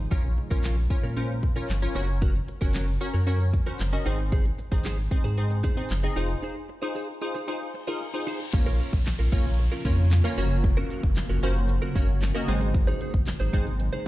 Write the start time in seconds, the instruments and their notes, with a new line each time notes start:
0.11 sub bass A#1, clean electric guitar C#4 F4 A#4, synth stab C#4 F4 A#4 C#5, kick
0.24 muted clean electric guitar stroke
0.37 muted clean electric guitar stroke
0.50 sub bass A#1, synth stab C#4 F4 A#4 C#5, clean electric guitar C#4 F4 A#4, kick
0.64 clean electric guitar C#4 F4 A#4, snare, clap
0.77 muted clean electric guitar stroke
0.90 synth stab C#4 F4 A#4 C#5, muted clean electric guitar stroke, kick
1.03 sub bass A#2, clean electric guitar C#4 F4 A#4
1.16 clean electric guitar C#4 F4 A#4, synth stab C#4 F4 A#4 C5
1.30 muted clean electric guitar stroke
1.43 muted clean electric guitar stroke, kick
1.56 synth stab C#4 F4 A#4 C#5, clean electric guitar C#4 F4 A#4
1.69 sub bass G1, muted clean electric guitar stroke, snare, clap
1.82 synth stab C#4 F4 A#4 C#5, muted clean electric guitar stroke
1.95 sub bass F#1, clean electric guitar C#4 F#4 A#4, synth stab C#4 F#4 A#4 C#5
2.08 muted clean electric guitar stroke
2.21 clean electric guitar C#4 F#4 A#4, kick, closed hi-hat
2.35 muted clean electric guitar stroke, closed hi-hat
2.48 muted clean electric guitar stroke, closed hi-hat
2.61 sub bass F#1, synth stab C#4 F#4 A#4 C#5, clean electric guitar C#4 F#4 A#4, kick, closed hi-hat
2.74 clean electric guitar C#4 F#4 A#4, snare, clap, closed hi-hat
2.87 muted clean electric guitar stroke, closed hi-hat
3.01 synth stab C#4 F#4 A#4 C#5, muted clean electric guitar stroke, closed hi-hat
3.14 sub bass F#2, clean electric guitar C#4 F#4 A#4, closed hi-hat
3.27 clean electric guitar C#4 F#4 A#4, synth stab C#4 F#4 A#4 C#5, closed hi-hat
3.40 muted clean electric guitar stroke, closed hi-hat
3.53 muted clean electric guitar stroke, kick, closed hi-hat
3.66 synth stab C#4 F#4 A#4 C5, clean electric guitar C#4 F#4 A#4, closed hi-hat
3.80 sub bass F#1, muted clean electric guitar stroke, snare, clap, closed hi-hat
3.93 synth stab C#4 F#4 A#4 D#5, muted clean electric guitar stroke, closed hi-hat
4.06 sub bass G#1, synth stab C4 D#4 G#4 C5, clean electric guitar D#4 G#4 C5, closed hi-hat
4.19 muted clean electric guitar stroke, closed hi-hat
4.32 clean electric guitar D#4 G#4 C5, kick, closed hi-hat
4.45 muted clean electric guitar stroke, closed hi-hat
4.59 muted clean electric guitar stroke, closed hi-hat
4.72 sub bass G#1, synth stab C4 D#4 G#4 C5, clean electric guitar D#4 G#4 C5, kick, closed hi-hat
4.85 clean electric guitar D#4 G#4 C5, snare, clap, closed hi-hat
4.98 muted clean electric guitar stroke, closed hi-hat
5.11 synth stab C4 D#4 G#4 C5, muted clean electric guitar stroke, kick, closed hi-hat
5.24 sub bass G#2, clean electric guitar D#4 G#4 C5, closed hi-hat
5.37 synth stab C4 D#4 G#4 C5, muted clean electric guitar stroke, closed hi-hat
5.50 muted clean electric guitar stroke, closed hi-hat
5.63 clean electric guitar D#4 G#4 C5, kick, closed hi-hat
5.76 synth stab C4 D#4 G#4 C5, clean electric guitar D#4 G#4 C5, closed hi-hat
5.90 sub bass F#1, muted clean electric guitar stroke, snare, clap, closed hi-hat
6.03 synth stab C4 D#4 G#4 D#5, muted clean electric guitar stroke, closed hi-hat
6.16 sub bass F1, clean electric guitar D#4 G#4 C5, synth stab D#4 F4 G#4 C5, closed hi-hat
6.29 muted clean electric guitar stroke, closed hi-hat
6.42 clean electric guitar D#4 G#4 C5
6.56 muted clean electric guitar stroke
6.69 muted clean electric guitar stroke
6.82 synth stab D#4 F4 G#4 C5, clean electric guitar D#4 G#4 C5
6.95 clean electric guitar D#4 G#4 C5
7.08 muted clean electric guitar stroke
7.21 synth stab D#4 F4 G#4 C5, muted clean electric guitar stroke
7.34 clean electric guitar D#4 G#4 C5
7.48 synth stab D#4 F4 G#4 C5, clean electric guitar D#4 G#4 C5, reverse cymbal
7.61 muted clean electric guitar stroke
7.74 muted clean electric guitar stroke
7.87 synth stab D#4 F4 G#4 A#4, clean electric guitar D#4 G#4 C5
8.01 muted clean electric guitar stroke
8.14 synth stab D#4 F4 G#4 C5, muted clean electric guitar stroke
8.27 clean electric guitar D#4 G#4 C5
8.40 muted clean electric guitar stroke
8.53 sub bass A#1, ambient pad C#3 F3 A#3 F4, synth stab A#3 C#4 F4 A#4 C#5, muted clean electric guitar stroke, kick, closed hi-hat, crash, downlifter
8.66 clean electric guitar C#4 F4 A#4, closed hi-hat
8.79 clean electric guitar C#4 F4 A#4, closed hi-hat
8.93 sub bass A#1, muted clean electric guitar stroke, kick, closed hi-hat
9.06 muted clean electric guitar stroke, snare, clap, closed hi-hat
9.19 sub bass A#1, clean electric guitar C#4 F4 A#4, closed hi-hat
9.32 sub bass A#1, synth stab A#3 C#4 F4 A#4 C#5, clean electric guitar C#4 F4 A#4, kick, closed hi-hat
9.46 muted clean electric guitar stroke, closed hi-hat
9.59 muted clean electric guitar stroke, closed hi-hat
9.72 clean electric guitar C#4 F4 A#4, closed hi-hat
9.85 sub bass F2, synth stab A#3 C#4 F4 A#4 C#5, clean electric guitar C#4 F4 A#4, kick, closed hi-hat
9.98 muted clean electric guitar stroke, closed hi-hat
10.11 muted clean electric guitar stroke, snare, clap, closed hi-hat
10.24 synth stab A#3 C#4 F4 A#4 C#5, clean electric guitar C#4 F4 A#4, closed hi-hat
10.38 sub bass F#1, ambient pad C#3 F#3 F#4, synth stab A#3 C#4 F#4 A#4 C#5, open hi-hat
10.51 muted clean electric guitar stroke, closed hi-hat
10.64 muted clean electric guitar stroke, kick, closed hi-hat
10.77 clean electric guitar C#4 F#4 A#4, closed hi-hat
10.90 clean electric guitar C#4 F#4 A#4, closed hi-hat
11.03 sub bass F#1, muted clean electric guitar stroke, kick, closed hi-hat
11.16 muted clean electric guitar stroke, snare, clap, closed hi-hat
11.29 sub bass F#1, clean electric guitar C#4 F#4 A#4, closed hi-hat
11.43 sub bass F#1, synth stab A#3 C#4 F#4 A#4 C5, clean electric guitar C#4 F#4 A#4, closed hi-hat
11.56 muted clean electric guitar stroke, closed hi-hat
11.69 muted clean electric guitar stroke, closed hi-hat
11.82 clean electric guitar C#4 F#4 A#4, closed hi-hat
11.95 sub bass G1, synth stab A#3 C#4 F#4 A#4 C#5, clean electric guitar C#4 F#4 A#4, kick, closed hi-hat
12.08 muted clean electric guitar stroke, closed hi-hat
12.21 muted clean electric guitar stroke, snare, clap, closed hi-hat
12.35 synth stab A#3 C#4 F#4 A#4 D#5, clean electric guitar C#4 F#4 A#4, closed hi-hat
12.48 sub bass G#1, ambient pad C3 D#3 G#3 D#4, synth stab G#3 C4 D#4 G#4 C5, muted clean electric guitar stroke, open hi-hat
12.61 muted clean electric guitar stroke, closed hi-hat
12.74 muted clean electric guitar stroke, kick, closed hi-hat
12.87 clean electric guitar D#4 G#4 C5, closed hi-hat
13.01 clean electric guitar D#4 G#4 C5, closed hi-hat
13.14 sub bass G#1, kick, closed hi-hat
13.27 muted clean electric guitar stroke, snare, clap, closed hi-hat
13.40 sub bass G#1, clean electric guitar D#4 G#4 C5, closed hi-hat
13.53 sub bass G#1, synth stab G#3 C4 D#4 G#4 C5, clean electric guitar D#4 G#4 C5, kick, closed hi-hat
13.66 muted clean electric guitar stroke, closed hi-hat
13.80 muted clean electric guitar stroke, closed hi-hat
13.93 clean electric guitar D#4 G#4 C5, closed hi-hat